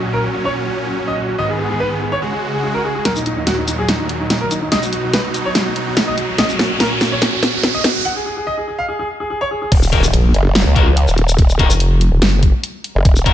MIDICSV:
0, 0, Header, 1, 9, 480
1, 0, Start_track
1, 0, Key_signature, -6, "minor"
1, 0, Tempo, 416667
1, 1596, Time_signature, 4, 2, 24, 8
1, 15361, End_track
2, 0, Start_track
2, 0, Title_t, "Grand piano"
2, 0, Program_c, 0, 0
2, 39, Note_on_c, 0, 66, 62
2, 103, Note_off_c, 0, 66, 0
2, 154, Note_on_c, 0, 70, 93
2, 224, Note_off_c, 0, 70, 0
2, 279, Note_on_c, 0, 66, 60
2, 343, Note_off_c, 0, 66, 0
2, 395, Note_on_c, 0, 66, 58
2, 464, Note_off_c, 0, 66, 0
2, 519, Note_on_c, 0, 73, 94
2, 583, Note_off_c, 0, 73, 0
2, 635, Note_on_c, 0, 66, 61
2, 704, Note_off_c, 0, 66, 0
2, 760, Note_on_c, 0, 66, 64
2, 824, Note_off_c, 0, 66, 0
2, 999, Note_on_c, 0, 66, 59
2, 1063, Note_off_c, 0, 66, 0
2, 1115, Note_on_c, 0, 66, 58
2, 1184, Note_off_c, 0, 66, 0
2, 1239, Note_on_c, 0, 75, 88
2, 1303, Note_off_c, 0, 75, 0
2, 1355, Note_on_c, 0, 66, 65
2, 1424, Note_off_c, 0, 66, 0
2, 1480, Note_on_c, 0, 66, 62
2, 1544, Note_off_c, 0, 66, 0
2, 1595, Note_on_c, 0, 75, 95
2, 1664, Note_off_c, 0, 75, 0
2, 1721, Note_on_c, 0, 68, 59
2, 1784, Note_off_c, 0, 68, 0
2, 1836, Note_on_c, 0, 68, 59
2, 1904, Note_off_c, 0, 68, 0
2, 1960, Note_on_c, 0, 68, 66
2, 2024, Note_off_c, 0, 68, 0
2, 2075, Note_on_c, 0, 71, 92
2, 2144, Note_off_c, 0, 71, 0
2, 2200, Note_on_c, 0, 68, 61
2, 2264, Note_off_c, 0, 68, 0
2, 2316, Note_on_c, 0, 68, 60
2, 2384, Note_off_c, 0, 68, 0
2, 2441, Note_on_c, 0, 73, 92
2, 2504, Note_off_c, 0, 73, 0
2, 2556, Note_on_c, 0, 68, 61
2, 2625, Note_off_c, 0, 68, 0
2, 2680, Note_on_c, 0, 68, 63
2, 2744, Note_off_c, 0, 68, 0
2, 2920, Note_on_c, 0, 68, 59
2, 2984, Note_off_c, 0, 68, 0
2, 3036, Note_on_c, 0, 68, 62
2, 3105, Note_off_c, 0, 68, 0
2, 3160, Note_on_c, 0, 70, 88
2, 3224, Note_off_c, 0, 70, 0
2, 3277, Note_on_c, 0, 68, 62
2, 3345, Note_off_c, 0, 68, 0
2, 3400, Note_on_c, 0, 68, 62
2, 3464, Note_off_c, 0, 68, 0
2, 3515, Note_on_c, 0, 70, 90
2, 3584, Note_off_c, 0, 70, 0
2, 3640, Note_on_c, 0, 63, 61
2, 3704, Note_off_c, 0, 63, 0
2, 3756, Note_on_c, 0, 63, 62
2, 3825, Note_off_c, 0, 63, 0
2, 3880, Note_on_c, 0, 63, 63
2, 3944, Note_off_c, 0, 63, 0
2, 3995, Note_on_c, 0, 66, 96
2, 4064, Note_off_c, 0, 66, 0
2, 4120, Note_on_c, 0, 63, 63
2, 4184, Note_off_c, 0, 63, 0
2, 4236, Note_on_c, 0, 63, 58
2, 4304, Note_off_c, 0, 63, 0
2, 4360, Note_on_c, 0, 68, 88
2, 4424, Note_off_c, 0, 68, 0
2, 4476, Note_on_c, 0, 63, 62
2, 4544, Note_off_c, 0, 63, 0
2, 4601, Note_on_c, 0, 63, 62
2, 4664, Note_off_c, 0, 63, 0
2, 4840, Note_on_c, 0, 63, 59
2, 4904, Note_off_c, 0, 63, 0
2, 4956, Note_on_c, 0, 63, 59
2, 5025, Note_off_c, 0, 63, 0
2, 5080, Note_on_c, 0, 70, 89
2, 5144, Note_off_c, 0, 70, 0
2, 5195, Note_on_c, 0, 63, 63
2, 5264, Note_off_c, 0, 63, 0
2, 5319, Note_on_c, 0, 63, 61
2, 5383, Note_off_c, 0, 63, 0
2, 5435, Note_on_c, 0, 75, 97
2, 5504, Note_off_c, 0, 75, 0
2, 5559, Note_on_c, 0, 66, 62
2, 5623, Note_off_c, 0, 66, 0
2, 5675, Note_on_c, 0, 66, 64
2, 5744, Note_off_c, 0, 66, 0
2, 5799, Note_on_c, 0, 66, 67
2, 5863, Note_off_c, 0, 66, 0
2, 5915, Note_on_c, 0, 71, 94
2, 5984, Note_off_c, 0, 71, 0
2, 6040, Note_on_c, 0, 66, 63
2, 6104, Note_off_c, 0, 66, 0
2, 6155, Note_on_c, 0, 66, 56
2, 6224, Note_off_c, 0, 66, 0
2, 6280, Note_on_c, 0, 73, 90
2, 6344, Note_off_c, 0, 73, 0
2, 6395, Note_on_c, 0, 66, 64
2, 6464, Note_off_c, 0, 66, 0
2, 6520, Note_on_c, 0, 66, 65
2, 6584, Note_off_c, 0, 66, 0
2, 6759, Note_on_c, 0, 66, 62
2, 6823, Note_off_c, 0, 66, 0
2, 6875, Note_on_c, 0, 66, 60
2, 6944, Note_off_c, 0, 66, 0
2, 7000, Note_on_c, 0, 75, 96
2, 7064, Note_off_c, 0, 75, 0
2, 7115, Note_on_c, 0, 66, 65
2, 7184, Note_off_c, 0, 66, 0
2, 7240, Note_on_c, 0, 66, 61
2, 7304, Note_off_c, 0, 66, 0
2, 7356, Note_on_c, 0, 75, 97
2, 7424, Note_off_c, 0, 75, 0
2, 7480, Note_on_c, 0, 66, 61
2, 7544, Note_off_c, 0, 66, 0
2, 7595, Note_on_c, 0, 66, 64
2, 7664, Note_off_c, 0, 66, 0
2, 7721, Note_on_c, 0, 66, 66
2, 7784, Note_off_c, 0, 66, 0
2, 7836, Note_on_c, 0, 70, 94
2, 7904, Note_off_c, 0, 70, 0
2, 7961, Note_on_c, 0, 66, 64
2, 8024, Note_off_c, 0, 66, 0
2, 8076, Note_on_c, 0, 66, 59
2, 8145, Note_off_c, 0, 66, 0
2, 8200, Note_on_c, 0, 73, 92
2, 8264, Note_off_c, 0, 73, 0
2, 8315, Note_on_c, 0, 66, 66
2, 8384, Note_off_c, 0, 66, 0
2, 8439, Note_on_c, 0, 66, 66
2, 8503, Note_off_c, 0, 66, 0
2, 8680, Note_on_c, 0, 66, 64
2, 8744, Note_off_c, 0, 66, 0
2, 8796, Note_on_c, 0, 66, 62
2, 8865, Note_off_c, 0, 66, 0
2, 8919, Note_on_c, 0, 75, 92
2, 8984, Note_off_c, 0, 75, 0
2, 9036, Note_on_c, 0, 66, 67
2, 9104, Note_off_c, 0, 66, 0
2, 9160, Note_on_c, 0, 66, 62
2, 9224, Note_off_c, 0, 66, 0
2, 9276, Note_on_c, 0, 78, 97
2, 9344, Note_off_c, 0, 78, 0
2, 9400, Note_on_c, 0, 68, 63
2, 9464, Note_off_c, 0, 68, 0
2, 9515, Note_on_c, 0, 68, 66
2, 9584, Note_off_c, 0, 68, 0
2, 9639, Note_on_c, 0, 68, 64
2, 9703, Note_off_c, 0, 68, 0
2, 9754, Note_on_c, 0, 75, 97
2, 9824, Note_off_c, 0, 75, 0
2, 9879, Note_on_c, 0, 68, 65
2, 9943, Note_off_c, 0, 68, 0
2, 9996, Note_on_c, 0, 68, 61
2, 10064, Note_off_c, 0, 68, 0
2, 10120, Note_on_c, 0, 77, 93
2, 10184, Note_off_c, 0, 77, 0
2, 10235, Note_on_c, 0, 68, 67
2, 10304, Note_off_c, 0, 68, 0
2, 10360, Note_on_c, 0, 68, 68
2, 10424, Note_off_c, 0, 68, 0
2, 10600, Note_on_c, 0, 68, 65
2, 10664, Note_off_c, 0, 68, 0
2, 10716, Note_on_c, 0, 68, 62
2, 10784, Note_off_c, 0, 68, 0
2, 10840, Note_on_c, 0, 73, 95
2, 10904, Note_off_c, 0, 73, 0
2, 10955, Note_on_c, 0, 68, 66
2, 11024, Note_off_c, 0, 68, 0
2, 11080, Note_on_c, 0, 68, 65
2, 11144, Note_off_c, 0, 68, 0
2, 15361, End_track
3, 0, Start_track
3, 0, Title_t, "Distorted electric guitar"
3, 0, Program_c, 1, 30
3, 11432, Note_on_c, 1, 70, 103
3, 11439, Note_on_c, 1, 66, 73
3, 11442, Note_on_c, 1, 63, 69
3, 11519, Note_off_c, 1, 63, 0
3, 11519, Note_off_c, 1, 66, 0
3, 11519, Note_off_c, 1, 70, 0
3, 12392, Note_on_c, 1, 70, 92
3, 12398, Note_on_c, 1, 66, 79
3, 12404, Note_on_c, 1, 63, 73
3, 12479, Note_off_c, 1, 63, 0
3, 12479, Note_off_c, 1, 66, 0
3, 12479, Note_off_c, 1, 70, 0
3, 13353, Note_on_c, 1, 70, 96
3, 13357, Note_on_c, 1, 66, 73
3, 13364, Note_on_c, 1, 63, 79
3, 13439, Note_off_c, 1, 63, 0
3, 13439, Note_off_c, 1, 66, 0
3, 13439, Note_off_c, 1, 70, 0
3, 15273, Note_on_c, 1, 70, 110
3, 15277, Note_on_c, 1, 66, 73
3, 15282, Note_on_c, 1, 63, 79
3, 15359, Note_off_c, 1, 63, 0
3, 15359, Note_off_c, 1, 66, 0
3, 15359, Note_off_c, 1, 70, 0
3, 15361, End_track
4, 0, Start_track
4, 0, Title_t, "Supersaw synth"
4, 0, Program_c, 2, 81
4, 0, Note_on_c, 2, 46, 81
4, 0, Note_on_c, 2, 54, 87
4, 0, Note_on_c, 2, 61, 88
4, 1550, Note_off_c, 2, 54, 0
4, 1577, Note_off_c, 2, 46, 0
4, 1577, Note_off_c, 2, 61, 0
4, 1595, Note_on_c, 2, 44, 76
4, 1595, Note_on_c, 2, 51, 70
4, 1595, Note_on_c, 2, 59, 80
4, 2546, Note_off_c, 2, 44, 0
4, 2546, Note_off_c, 2, 51, 0
4, 2546, Note_off_c, 2, 59, 0
4, 2556, Note_on_c, 2, 49, 79
4, 2556, Note_on_c, 2, 56, 70
4, 2556, Note_on_c, 2, 66, 83
4, 3506, Note_off_c, 2, 49, 0
4, 3506, Note_off_c, 2, 56, 0
4, 3506, Note_off_c, 2, 66, 0
4, 3516, Note_on_c, 2, 54, 87
4, 3517, Note_on_c, 2, 39, 80
4, 3517, Note_on_c, 2, 46, 73
4, 5417, Note_off_c, 2, 39, 0
4, 5417, Note_off_c, 2, 46, 0
4, 5417, Note_off_c, 2, 54, 0
4, 5436, Note_on_c, 2, 47, 84
4, 5436, Note_on_c, 2, 54, 73
4, 5436, Note_on_c, 2, 63, 90
4, 7337, Note_off_c, 2, 47, 0
4, 7337, Note_off_c, 2, 63, 0
4, 7355, Note_on_c, 2, 46, 82
4, 7355, Note_on_c, 2, 61, 94
4, 9237, Note_off_c, 2, 54, 0
4, 9256, Note_off_c, 2, 46, 0
4, 9256, Note_off_c, 2, 61, 0
4, 15361, End_track
5, 0, Start_track
5, 0, Title_t, "Wobble bass"
5, 0, Program_c, 3, 39
5, 11676, Note_on_c, 3, 34, 93
5, 11897, Note_off_c, 3, 34, 0
5, 13480, Note_on_c, 3, 29, 102
5, 13940, Note_off_c, 3, 29, 0
5, 13960, Note_on_c, 3, 27, 94
5, 14057, Note_off_c, 3, 27, 0
5, 14076, Note_on_c, 3, 30, 101
5, 14421, Note_off_c, 3, 30, 0
5, 15361, End_track
6, 0, Start_track
6, 0, Title_t, "Wobble bass"
6, 0, Program_c, 4, 39
6, 11195, Note_on_c, 4, 27, 96
6, 11657, Note_off_c, 4, 27, 0
6, 11916, Note_on_c, 4, 30, 94
6, 12261, Note_off_c, 4, 30, 0
6, 12280, Note_on_c, 4, 37, 99
6, 12740, Note_off_c, 4, 37, 0
6, 12761, Note_on_c, 4, 27, 92
6, 13256, Note_off_c, 4, 27, 0
6, 13256, Note_on_c, 4, 26, 92
6, 13461, Note_off_c, 4, 26, 0
6, 14920, Note_on_c, 4, 30, 105
6, 15017, Note_off_c, 4, 30, 0
6, 15035, Note_on_c, 4, 27, 100
6, 15361, Note_off_c, 4, 27, 0
6, 15361, End_track
7, 0, Start_track
7, 0, Title_t, "Impact"
7, 0, Program_c, 5, 103
7, 11196, Note_on_c, 5, 60, 78
7, 13116, Note_off_c, 5, 60, 0
7, 15361, End_track
8, 0, Start_track
8, 0, Title_t, "Riser"
8, 0, Program_c, 6, 103
8, 3516, Note_on_c, 6, 60, 77
8, 9276, Note_off_c, 6, 60, 0
8, 15361, End_track
9, 0, Start_track
9, 0, Title_t, "Drums"
9, 3516, Note_on_c, 9, 38, 48
9, 3516, Note_on_c, 9, 42, 81
9, 3631, Note_off_c, 9, 38, 0
9, 3631, Note_off_c, 9, 42, 0
9, 3640, Note_on_c, 9, 82, 51
9, 3756, Note_off_c, 9, 82, 0
9, 3756, Note_on_c, 9, 42, 55
9, 3871, Note_off_c, 9, 42, 0
9, 3996, Note_on_c, 9, 38, 50
9, 3996, Note_on_c, 9, 42, 82
9, 4111, Note_off_c, 9, 38, 0
9, 4111, Note_off_c, 9, 42, 0
9, 4236, Note_on_c, 9, 42, 56
9, 4236, Note_on_c, 9, 82, 53
9, 4351, Note_off_c, 9, 42, 0
9, 4351, Note_off_c, 9, 82, 0
9, 4476, Note_on_c, 9, 38, 52
9, 4476, Note_on_c, 9, 42, 88
9, 4591, Note_off_c, 9, 38, 0
9, 4591, Note_off_c, 9, 42, 0
9, 4716, Note_on_c, 9, 42, 54
9, 4831, Note_off_c, 9, 42, 0
9, 4955, Note_on_c, 9, 38, 55
9, 4955, Note_on_c, 9, 42, 81
9, 5071, Note_off_c, 9, 38, 0
9, 5071, Note_off_c, 9, 42, 0
9, 5195, Note_on_c, 9, 42, 54
9, 5195, Note_on_c, 9, 82, 52
9, 5310, Note_off_c, 9, 42, 0
9, 5310, Note_off_c, 9, 82, 0
9, 5435, Note_on_c, 9, 38, 59
9, 5435, Note_on_c, 9, 42, 84
9, 5550, Note_off_c, 9, 38, 0
9, 5550, Note_off_c, 9, 42, 0
9, 5560, Note_on_c, 9, 82, 52
9, 5675, Note_off_c, 9, 82, 0
9, 5675, Note_on_c, 9, 42, 56
9, 5790, Note_off_c, 9, 42, 0
9, 5915, Note_on_c, 9, 38, 66
9, 5915, Note_on_c, 9, 42, 82
9, 6031, Note_off_c, 9, 38, 0
9, 6031, Note_off_c, 9, 42, 0
9, 6155, Note_on_c, 9, 42, 54
9, 6155, Note_on_c, 9, 82, 52
9, 6271, Note_off_c, 9, 42, 0
9, 6271, Note_off_c, 9, 82, 0
9, 6395, Note_on_c, 9, 38, 71
9, 6395, Note_on_c, 9, 42, 84
9, 6510, Note_off_c, 9, 38, 0
9, 6510, Note_off_c, 9, 42, 0
9, 6635, Note_on_c, 9, 42, 55
9, 6750, Note_off_c, 9, 42, 0
9, 6875, Note_on_c, 9, 38, 70
9, 6875, Note_on_c, 9, 42, 83
9, 6990, Note_off_c, 9, 38, 0
9, 6990, Note_off_c, 9, 42, 0
9, 7115, Note_on_c, 9, 42, 56
9, 7230, Note_off_c, 9, 42, 0
9, 7355, Note_on_c, 9, 38, 72
9, 7355, Note_on_c, 9, 42, 80
9, 7470, Note_off_c, 9, 38, 0
9, 7470, Note_off_c, 9, 42, 0
9, 7479, Note_on_c, 9, 82, 50
9, 7595, Note_off_c, 9, 82, 0
9, 7595, Note_on_c, 9, 38, 77
9, 7595, Note_on_c, 9, 42, 55
9, 7710, Note_off_c, 9, 38, 0
9, 7710, Note_off_c, 9, 42, 0
9, 7835, Note_on_c, 9, 38, 80
9, 7835, Note_on_c, 9, 42, 81
9, 7950, Note_off_c, 9, 38, 0
9, 7950, Note_off_c, 9, 42, 0
9, 8075, Note_on_c, 9, 38, 80
9, 8075, Note_on_c, 9, 42, 54
9, 8075, Note_on_c, 9, 82, 50
9, 8190, Note_off_c, 9, 38, 0
9, 8190, Note_off_c, 9, 42, 0
9, 8190, Note_off_c, 9, 82, 0
9, 8315, Note_on_c, 9, 38, 89
9, 8315, Note_on_c, 9, 42, 88
9, 8430, Note_off_c, 9, 38, 0
9, 8430, Note_off_c, 9, 42, 0
9, 8555, Note_on_c, 9, 38, 86
9, 8555, Note_on_c, 9, 42, 58
9, 8671, Note_off_c, 9, 38, 0
9, 8671, Note_off_c, 9, 42, 0
9, 8795, Note_on_c, 9, 38, 90
9, 8795, Note_on_c, 9, 42, 82
9, 8910, Note_off_c, 9, 38, 0
9, 8910, Note_off_c, 9, 42, 0
9, 9035, Note_on_c, 9, 38, 94
9, 9035, Note_on_c, 9, 42, 56
9, 9035, Note_on_c, 9, 82, 52
9, 9150, Note_off_c, 9, 38, 0
9, 9150, Note_off_c, 9, 42, 0
9, 9150, Note_off_c, 9, 82, 0
9, 11195, Note_on_c, 9, 36, 117
9, 11195, Note_on_c, 9, 42, 86
9, 11195, Note_on_c, 9, 49, 109
9, 11310, Note_off_c, 9, 36, 0
9, 11310, Note_off_c, 9, 42, 0
9, 11310, Note_off_c, 9, 49, 0
9, 11320, Note_on_c, 9, 82, 56
9, 11435, Note_off_c, 9, 82, 0
9, 11435, Note_on_c, 9, 36, 64
9, 11435, Note_on_c, 9, 42, 58
9, 11550, Note_off_c, 9, 36, 0
9, 11551, Note_off_c, 9, 42, 0
9, 11560, Note_on_c, 9, 82, 88
9, 11675, Note_off_c, 9, 82, 0
9, 11676, Note_on_c, 9, 42, 86
9, 11791, Note_off_c, 9, 42, 0
9, 11916, Note_on_c, 9, 42, 55
9, 12031, Note_off_c, 9, 42, 0
9, 12156, Note_on_c, 9, 38, 123
9, 12156, Note_on_c, 9, 42, 87
9, 12271, Note_off_c, 9, 38, 0
9, 12271, Note_off_c, 9, 42, 0
9, 12395, Note_on_c, 9, 36, 115
9, 12396, Note_on_c, 9, 42, 55
9, 12510, Note_off_c, 9, 36, 0
9, 12511, Note_off_c, 9, 42, 0
9, 12635, Note_on_c, 9, 42, 82
9, 12751, Note_off_c, 9, 42, 0
9, 12760, Note_on_c, 9, 82, 53
9, 12875, Note_off_c, 9, 82, 0
9, 12876, Note_on_c, 9, 42, 58
9, 12991, Note_off_c, 9, 42, 0
9, 13000, Note_on_c, 9, 82, 82
9, 13115, Note_off_c, 9, 82, 0
9, 13115, Note_on_c, 9, 36, 119
9, 13116, Note_on_c, 9, 42, 87
9, 13230, Note_off_c, 9, 36, 0
9, 13231, Note_off_c, 9, 42, 0
9, 13241, Note_on_c, 9, 82, 53
9, 13355, Note_on_c, 9, 36, 68
9, 13356, Note_off_c, 9, 82, 0
9, 13356, Note_on_c, 9, 42, 58
9, 13470, Note_off_c, 9, 36, 0
9, 13471, Note_off_c, 9, 42, 0
9, 13480, Note_on_c, 9, 82, 86
9, 13596, Note_off_c, 9, 82, 0
9, 13596, Note_on_c, 9, 42, 84
9, 13711, Note_off_c, 9, 42, 0
9, 13836, Note_on_c, 9, 42, 56
9, 13951, Note_off_c, 9, 42, 0
9, 14076, Note_on_c, 9, 38, 127
9, 14076, Note_on_c, 9, 42, 90
9, 14191, Note_off_c, 9, 38, 0
9, 14191, Note_off_c, 9, 42, 0
9, 14315, Note_on_c, 9, 36, 112
9, 14315, Note_on_c, 9, 42, 58
9, 14431, Note_off_c, 9, 36, 0
9, 14431, Note_off_c, 9, 42, 0
9, 14556, Note_on_c, 9, 42, 81
9, 14671, Note_off_c, 9, 42, 0
9, 14796, Note_on_c, 9, 42, 59
9, 14911, Note_off_c, 9, 42, 0
9, 15035, Note_on_c, 9, 36, 122
9, 15036, Note_on_c, 9, 42, 87
9, 15151, Note_off_c, 9, 36, 0
9, 15151, Note_off_c, 9, 42, 0
9, 15160, Note_on_c, 9, 82, 54
9, 15275, Note_off_c, 9, 82, 0
9, 15275, Note_on_c, 9, 42, 58
9, 15276, Note_on_c, 9, 36, 68
9, 15361, Note_off_c, 9, 36, 0
9, 15361, Note_off_c, 9, 42, 0
9, 15361, End_track
0, 0, End_of_file